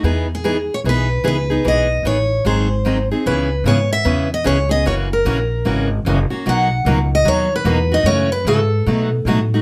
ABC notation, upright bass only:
X:1
M:4/4
L:1/8
Q:"Swing" 1/4=150
K:E
V:1 name="Upright bass" clef=bass
E,,4 B,,,2 C,,2 | B,,,2 A,,,2 G,,,4 | [K:C#m] C,,2 G,,2 E,,2 C,,2 | F,,,2 ^A,,,2 G,,,2 F,,, z |
B,,,2 C,,2 D,,2 E,,2 | F,,2 G,,2 B,,2 A,,2 |]